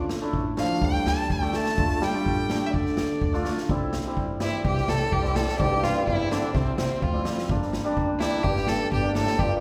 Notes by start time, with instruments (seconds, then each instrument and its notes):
Already playing: upright bass D2
0.09 snare
0.21 hammered dulcimer A3 D4 E4
0.33 upright bass A1, kick
0.57 trombone F3, hammered dulcimer A3 D4 E4, violin F5, snare
0.82 upright bass D2, trombone G3, violin G5, kick
0.94 snare
1.05 upright bass D2, violin A5, snare
1.30 upright bass D2, trombone G3, violin G5, kick
1.41 hammered dulcimer A3 D4 G4, snare
1.53 trombone A3, violin A5, snare
1.66 snare
1.77 upright bass D2, hammered dulcimer A3 D4 F4, kick
1.90 snare
2.01 trombone G3, violin G5, snare
2.13 hammered dulcimer A3 D4 F4
2.26 upright bass A1, kick
2.49 hammered dulcimer A3 D4 G4, snare
2.66 violin E5
2.72 upright bass D2, trombone D3, violin D5, kick
2.86 snare
2.97 upright bass D2, snare
3.21 upright bass D2, kick
3.33 hammered dulcimer A3 D4 F4, snare
3.45 snare
3.57 snare
3.69 upright bass C2, hammered dulcimer G3 C4 E4, kick
3.93 snare
4.06 hammered dulcimer G3 C4 E4
4.17 upright bass G2, kick
4.40 trombone E2, hammered dulcimer G3 C4 G4, violin E4, snare
4.64 upright bass C2, trombone G2, violin G4, kick
4.77 snare
4.82 trombone A#2
4.87 upright bass C2, trombone A2, violin A4, snare
5.11 upright bass C2, trombone G2, violin G4, kick
5.22 hammered dulcimer G3 C4 E4, snare
5.34 trombone A2, violin A4, snare
5.48 snare
5.57 upright bass C2, trombone G2, hammered dulcimer G3 C4 E4, violin G4, kick
5.83 violin F4, snare
5.94 hammered dulcimer G3 C4 E4
6.07 trombone E2, upright bass G2, violin E4, kick
6.29 trombone D3, hammered dulcimer G3 C4 E4, violin D4, snare
6.53 upright bass C2, trombone C3, violin C4, kick, snare
6.78 upright bass C2, trombone C3, violin C4, snare
7.02 upright bass D2, trombone F2, violin F4, kick
7.13 hammered dulcimer G3 C4 E4
7.25 trombone F2, snare
7.38 snare
7.49 upright bass G1, hammered dulcimer G3 A#3 D4, kick
7.62 snare
7.73 snare
7.84 hammered dulcimer G3 A#3 D4
7.97 upright bass D2, kick
8.19 trombone E2, hammered dulcimer G3 A#3 D4, violin E4, snare
8.41 upright bass G1, trombone G2, violin G4, kick
8.56 snare
8.67 upright bass G1, violin A4, snare
8.90 upright bass G1, trombone G2, violin G4, kick
9.02 hammered dulcimer G3 A#3 D4
9.15 trombone A2, violin A4, snare
9.27 snare
9.38 upright bass G1, trombone G2, hammered dulcimer G3 A#3 F4, violin G4, kick
9.57 violin G4